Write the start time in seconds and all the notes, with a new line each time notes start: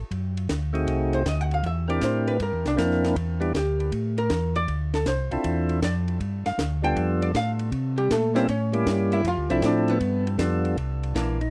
0.11 F#2, kick, ride
0.37 ride
0.49 D2, kick, snare, hi-hat pedal, ride
0.73 A3 C4 D#4 F#4 G#4, ride
0.87 C2, kick, ride
1.13 C5, ride
1.26 D2 D#5, kick, snare, hi-hat pedal, ride
1.41 F#5
1.51 F5, ride
1.63 E2 E5, kick, ride
1.88 C4 D4 E4 G4 A#4 D5, ride
2.01 A2 C5, kick, snare, hi-hat pedal, ride
2.27 B4, ride
2.40 G2 A#4, kick, ride
2.53 E2
2.65 C2 D4, snare, ride
2.76 F2 A#3 C4 D4 E4 A#4, kick, snare, hi-hat pedal, ride
2.91 snare
3.04 snare, ride
3.15 E2, kick, ride
3.40 G3 B3 D4 E4 G4, ride
3.54 D2 G4, kick, snare, hi-hat pedal, ride
3.80 ride
3.92 A2, kick, ride
4.18 A#4, ride
4.30 E2, kick, snare, hi-hat pedal, ride
4.55 D5, ride
4.68 D2, kick, ride
4.94 A4, snare, ride
5.06 C2 C5, kick, snare, hi-hat pedal, ride
5.31 C2 C4 D4 E4 F4 A4, ride
5.44 E2, kick, ride
5.69 ride
5.82 F2 D5, kick, snare, hi-hat pedal, ride
6.08 ride
6.20 G2, kick, ride
6.46 G2 F5, snare, ride
6.58 D2, kick, snare, hi-hat pedal, ride
6.82 G3 B3 D4 F4 A4 G5, ride
6.96 F2, kick, ride
7.22 D5, ride
7.34 A2 F5, kick, snare, hi-hat pedal, ride
7.59 ride
7.72 C3, kick, ride
7.98 G3 G4, ride
8.10 A#2 A3 A4, kick, snare, hi-hat pedal, ride
8.34 G3 A#3 C4 C#4 E4 A4 C5, snare, ride
8.48 A2 C#4 C#5, kick, ride
8.72 G3 A#3 C#4 E4 G4, ride
8.86 G2, kick, snare, hi-hat pedal, ride
9.12 E4 E5, ride
9.24 F2 F4 F5, kick, ride
9.37 D2
9.49 C2 F3 C4 D4 E4 A4 E5, ride
9.62 A2 D4 D5, kick, snare, hi-hat pedal, ride
9.88 B3 B4, ride
10.01 G2, kick, ride
10.27 ride
10.38 F2 G3 B3 D4 F4 A4, kick, snare, hi-hat pedal, ride
10.65 ride
10.77 C2, kick, ride
11.03 ride
11.15 A#1 E3 A#3 D4, kick, snare, hi-hat pedal, ride
11.41 D#4, ride